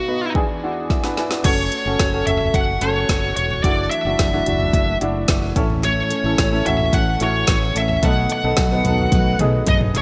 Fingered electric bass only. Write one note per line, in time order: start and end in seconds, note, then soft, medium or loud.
1.45 1.67 F#1 medium
1.86 1.97 F#1 medium
2.00 2.22 F#1 medium
2.27 2.49 F#1 medium
2.54 2.77 F#1 medium
2.81 3.04 F#1 medium
3.09 3.32 F#1 medium
3.37 3.59 E1 medium
3.64 3.87 F#1 medium
4.05 4.16 F#1 medium
4.19 4.42 F#1 medium
4.47 4.69 F#1 medium
4.73 4.96 F#1 medium
5.02 5.24 F#1 medium
5.29 5.51 F#1 medium
5.56 6.01 A1 medium
6.24 6.36 A1 medium
6.39 6.61 A1 medium
6.66 6.89 A1 medium
6.93 7.16 A1 medium
7.21 7.43 A1 medium
7.48 7.71 A1 medium
7.75 7.98 A1 medium
8.03 8.25 B1 loud
8.44 8.55 B1 medium
8.58 8.80 B1 medium
8.85 9.07 B1 medium
9.12 9.35 B1 medium
9.39 9.62 B1 medium
9.67 9.90 B1 medium
9.95 10.02 E1 medium